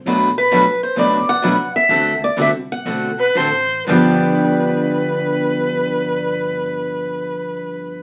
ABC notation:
X:1
M:4/4
L:1/8
Q:"Swing" 1/4=114
K:Gmix
V:1 name="Steel-string acoustic guitar"
z B2 c d ^f2 e- | e d e ^f3 z2 | g8- | g8 |]
V:2 name="Viola"
z8 | z4 z B c2 | B8- | B8 |]
V:3 name="Steel-string acoustic guitar"
[B,,^F,A,D^FB] z [B,,F,A,DFB] z [B,,F,A,DFB] z [B,,F,A,DFB] z | [D,A,C^FA] z [D,A,CFA] z [D,A,CFA] z [D,A,CFA] z | [G,,D,F,B,DG]8- | [G,,D,F,B,DG]8 |]
V:4 name="Steel-string acoustic guitar"
[B,,^F,A,D^F] z [B,,F,A,DF] z [B,,F,A,DF] z [B,,F,A,DF] z | [D,A,C^FA] z [D,A,CFA] z [D,A,CFA] z [D,A,CFA] z | [G,,D,F,B,DG]8- | [G,,D,F,B,DG]8 |]
V:5 name="Upright bass" clef=bass
B,,,4 ^F,,,4 | D,,2 C,,2 B,,,2 A,,,2 | G,,,8- | G,,,8 |]